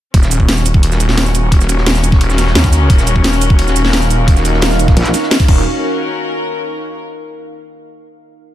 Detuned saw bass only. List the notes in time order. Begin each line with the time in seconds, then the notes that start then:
0.14 D#1
1.00 D#1
1.86 D#1
2.21 D#1
2.55 D#2
2.90 D#1
3.76 D#1
4.62 D#1
5.48 D#1